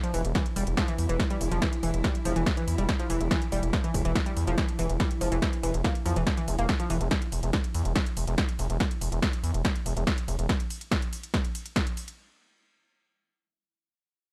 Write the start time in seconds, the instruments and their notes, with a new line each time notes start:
Already playing: synth drone E3 E4
0.03 synth arpeggio sound F3, closed hi-hat, ride
0.14 analog synth bass E1, synth arpeggio sound E3, open hi-hat, ride
0.25 analog synth bass E1, closed hi-hat, ride
0.35 synth arpeggio sound E3, kick, snare, closed hi-hat, ride
0.46 closed hi-hat, ride
0.56 analog synth bass E1, synth arpeggio sound G3, open hi-hat, ride
0.67 analog synth bass E1, closed hi-hat, ride
0.77 synth arpeggio sound F3, kick, snare, closed hi-hat, ride
0.88 synth arpeggio sound E3, closed hi-hat, ride
0.98 analog synth bass E2, open hi-hat, ride
1.09 analog synth bass E1, synth arpeggio sound E3, closed hi-hat, ride
1.20 kick, snare, closed hi-hat, ride
1.30 synth arpeggio sound G3, closed hi-hat, ride
1.41 analog synth bass E1, open hi-hat, ride
1.51 analog synth bass E1, synth arpeggio sound F3, closed hi-hat, ride
1.62 synth arpeggio sound E3, kick, snare, closed hi-hat, ride
1.73 closed hi-hat, ride
1.83 analog synth bass E1, synth arpeggio sound E3, open hi-hat, ride
1.94 analog synth bass E1, closed hi-hat, ride
2.04 synth arpeggio sound G3, kick, snare, closed hi-hat, ride
2.15 closed hi-hat, ride
2.25 analog synth bass E1, synth arpeggio sound F3, open hi-hat, ride
2.36 analog synth bass E1, synth arpeggio sound E3, closed hi-hat, ride
2.46 kick, snare, closed hi-hat, ride
2.57 synth arpeggio sound E3, closed hi-hat, ride
2.68 analog synth bass E2, open hi-hat, ride
2.78 analog synth bass E1, synth arpeggio sound G3, closed hi-hat, ride
2.89 kick, snare, closed hi-hat, ride
2.99 synth arpeggio sound F3, closed hi-hat, ride
3.10 analog synth bass E1, synth arpeggio sound E3, open hi-hat, ride
3.21 analog synth bass E1, closed hi-hat, ride
3.31 synth arpeggio sound E3, kick, snare, closed hi-hat, ride
3.42 closed hi-hat, ride
3.52 analog synth bass E1, synth arpeggio sound G3, open hi-hat, ride
3.63 analog synth bass E1, closed hi-hat, ride
3.73 synth arpeggio sound F3, kick, snare, closed hi-hat, ride
3.84 synth arpeggio sound E3, closed hi-hat, ride
3.94 analog synth bass E1, kick, open hi-hat, ride
4.05 analog synth bass E1, synth arpeggio sound E3, closed hi-hat, ride
4.15 kick, snare, closed hi-hat, ride
4.26 synth arpeggio sound G3, closed hi-hat, ride
4.37 analog synth bass E2, open hi-hat, ride
4.47 analog synth bass E1, synth arpeggio sound F3, closed hi-hat, ride
4.58 synth arpeggio sound E3, kick, snare, closed hi-hat, ride
4.68 closed hi-hat, ride
4.79 analog synth bass E1, synth arpeggio sound E3, open hi-hat, ride
4.90 analog synth bass E1, closed hi-hat, ride
5.00 synth arpeggio sound G3, kick, snare, closed hi-hat, ride
5.11 closed hi-hat, ride
5.21 analog synth bass E1, synth arpeggio sound F3, open hi-hat, ride
5.32 analog synth bass E1, synth arpeggio sound E3, closed hi-hat, ride
5.42 synth arpeggio sound E3, kick, snare, closed hi-hat, ride
5.53 closed hi-hat, ride
5.63 analog synth bass E1, synth arpeggio sound E3, open hi-hat, ride
5.74 analog synth bass E1, closed hi-hat, ride
5.84 synth arpeggio sound A#3, kick, snare, closed hi-hat, ride
5.95 closed hi-hat, ride
6.06 analog synth bass E2, synth arpeggio sound F3, open hi-hat, ride
6.16 analog synth bass E1, synth arpeggio sound E3, closed hi-hat, ride
6.27 kick, snare, closed hi-hat, ride
6.37 synth arpeggio sound E3, closed hi-hat, ride
6.48 analog synth bass E1, open hi-hat, ride
6.59 analog synth bass E1, synth arpeggio sound A#3, closed hi-hat, ride
6.69 kick, snare, closed hi-hat, ride
6.80 synth arpeggio sound F3, closed hi-hat, ride
6.90 analog synth bass E1, synth arpeggio sound E3, open hi-hat, ride
7.01 analog synth bass E1, closed hi-hat, ride
7.11 kick, snare, closed hi-hat, ride
7.22 closed hi-hat, ride
7.32 analog synth bass E1, open hi-hat, ride
7.43 analog synth bass E1, closed hi-hat, ride
7.53 kick, snare, closed hi-hat, ride
7.64 closed hi-hat, ride
7.74 analog synth bass E2, open hi-hat, ride
7.85 analog synth bass E1, closed hi-hat, ride
7.96 kick, snare, closed hi-hat, ride
8.06 closed hi-hat, ride
8.17 analog synth bass E1, open hi-hat, ride
8.27 analog synth bass E1, closed hi-hat, ride
8.38 kick, snare, closed hi-hat, ride
8.49 closed hi-hat, ride
8.59 analog synth bass E1, open hi-hat, ride
8.70 analog synth bass E1, closed hi-hat, ride
8.80 kick, snare, closed hi-hat, ride
8.91 closed hi-hat, ride
9.01 analog synth bass E1, open hi-hat, ride
9.12 analog synth bass E1, closed hi-hat, ride
9.22 kick, snare, closed hi-hat, ride
9.33 closed hi-hat, ride
9.43 analog synth bass E2, open hi-hat, ride
9.54 analog synth bass E1, closed hi-hat, ride
9.65 kick, snare, closed hi-hat, ride
9.76 closed hi-hat, ride
9.86 analog synth bass E1, open hi-hat, ride
9.97 analog synth bass E1, closed hi-hat, ride
10.07 kick, snare, closed hi-hat, ride
10.18 closed hi-hat, ride
10.28 analog synth bass E1, open hi-hat, ride
10.39 analog synth bass E1, closed hi-hat, ride
10.49 kick, snare, closed hi-hat, ride
10.60 closed hi-hat, ride
10.70 open hi-hat, ride
10.81 closed hi-hat, ride
10.91 kick, snare, closed hi-hat, ride
11.02 closed hi-hat, ride
11.13 open hi-hat, ride
11.23 closed hi-hat, ride
11.34 kick, snare, closed hi-hat, ride
11.45 closed hi-hat, ride
11.55 open hi-hat, ride
11.66 closed hi-hat, ride
11.76 kick, snare, closed hi-hat, ride
11.87 closed hi-hat, ride
11.97 open hi-hat, ride
12.08 closed hi-hat, ride